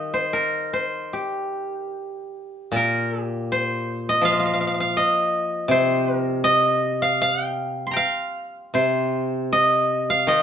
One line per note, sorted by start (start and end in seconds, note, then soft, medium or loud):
0.00 1.94 D#3 soft
0.00 0.35 G3 soft
0.00 1.32 D#5 medium
0.00 1.16 F5 medium
0.14 0.73 C5 medium
0.33 2.46 A#4 medium
0.73 2.71 C5 medium
1.13 3.24 G4 medium
2.72 4.96 A#2 medium
2.76 3.24 A#4 medium
3.24 4.89 G4 medium
3.52 5.50 C5 medium
4.09 4.96 D#5 medium
4.21 6.45 F3 medium
4.21 4.32 F5 medium
4.33 4.39 F5 medium
4.40 4.45 F5 medium
4.46 4.53 F5 medium
4.54 4.60 F5 medium
4.61 4.67 F5 medium
4.67 4.74 F5 medium
4.74 4.80 F5 soft
4.80 6.47 F5 medium
4.97 6.44 D#5 medium
5.68 7.96 C3 medium
5.68 6.16 C5 medium
6.16 7.69 A#4 medium
6.44 8.23 D#5 loud
7.02 7.22 F5 loud
7.22 7.44 F5 loud
7.44 7.93 G5 loud
7.87 9.17 C6 soft
7.91 9.49 G5 soft
7.91 9.32 A#5 soft
7.97 9.63 F5 medium
8.74 10.29 C3 medium
8.74 10.43 C5 medium
9.53 10.28 D#5 medium
10.10 10.43 F5 medium
10.27 10.43 D#3 medium
10.27 10.43 D#5 medium